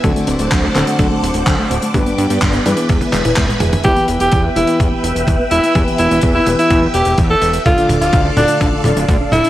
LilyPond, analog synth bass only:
\new Staff \with { instrumentName = "Analog synth bass" } { \clef bass \time 4/4 \key e \phrygian \tempo 4 = 126 d,16 r16 d,,16 d,,16 d,16 r16 d,,16 r16 d,16 r16 d,,16 d,,16 d,16 r16 d,,16 r16 | g,,16 r16 g,16 g,16 g,,16 r16 g,16 r16 e,16 r16 e,,16 e,,16 e,16 r16 e,,16 r16 | e,16 r16 e,,16 e,,16 e,16 r16 e,,16 r16 e,16 r16 e,,16 e,,16 e,16 r16 e,,16 r16 | e,16 r16 e,,16 e,,16 e,16 r16 e,,16 r16 e,16 r16 e,,16 e,,16 e,16 r16 e,,16 r16 |
d,16 r16 d,,16 d,,16 d,16 r16 d,,16 r16 d,16 r16 d,,16 d,,16 d,16 r16 d,,16 r16 | }